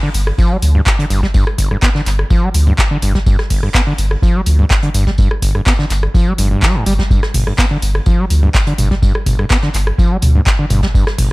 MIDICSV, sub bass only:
0, 0, Header, 1, 2, 480
1, 0, Start_track
1, 0, Tempo, 480000
1, 1344, Time_signature, 4, 2, 24, 8
1, 11325, End_track
2, 0, Start_track
2, 0, Title_t, "Sub bass"
2, 0, Program_c, 0, 38
2, 144, Note_on_c, 0, 31, 96
2, 318, Note_off_c, 0, 31, 0
2, 625, Note_on_c, 0, 38, 97
2, 798, Note_off_c, 0, 38, 0
2, 1105, Note_on_c, 0, 31, 98
2, 1278, Note_off_c, 0, 31, 0
2, 1584, Note_on_c, 0, 31, 99
2, 1758, Note_off_c, 0, 31, 0
2, 2064, Note_on_c, 0, 31, 99
2, 2238, Note_off_c, 0, 31, 0
2, 2544, Note_on_c, 0, 38, 99
2, 2718, Note_off_c, 0, 38, 0
2, 3024, Note_on_c, 0, 31, 101
2, 3198, Note_off_c, 0, 31, 0
2, 3504, Note_on_c, 0, 31, 97
2, 3678, Note_off_c, 0, 31, 0
2, 3984, Note_on_c, 0, 31, 98
2, 4158, Note_off_c, 0, 31, 0
2, 4464, Note_on_c, 0, 38, 95
2, 4638, Note_off_c, 0, 38, 0
2, 4944, Note_on_c, 0, 31, 102
2, 5118, Note_off_c, 0, 31, 0
2, 5424, Note_on_c, 0, 31, 98
2, 5598, Note_off_c, 0, 31, 0
2, 5904, Note_on_c, 0, 31, 100
2, 6077, Note_off_c, 0, 31, 0
2, 6384, Note_on_c, 0, 31, 86
2, 6558, Note_off_c, 0, 31, 0
2, 6864, Note_on_c, 0, 31, 77
2, 7038, Note_off_c, 0, 31, 0
2, 7344, Note_on_c, 0, 31, 96
2, 7518, Note_off_c, 0, 31, 0
2, 7824, Note_on_c, 0, 31, 100
2, 7998, Note_off_c, 0, 31, 0
2, 8304, Note_on_c, 0, 38, 94
2, 8478, Note_off_c, 0, 38, 0
2, 8784, Note_on_c, 0, 31, 101
2, 8958, Note_off_c, 0, 31, 0
2, 9264, Note_on_c, 0, 31, 99
2, 9437, Note_off_c, 0, 31, 0
2, 9744, Note_on_c, 0, 31, 97
2, 9917, Note_off_c, 0, 31, 0
2, 10224, Note_on_c, 0, 38, 97
2, 10397, Note_off_c, 0, 38, 0
2, 10704, Note_on_c, 0, 31, 100
2, 10878, Note_off_c, 0, 31, 0
2, 11184, Note_on_c, 0, 31, 102
2, 11325, Note_off_c, 0, 31, 0
2, 11325, End_track
0, 0, End_of_file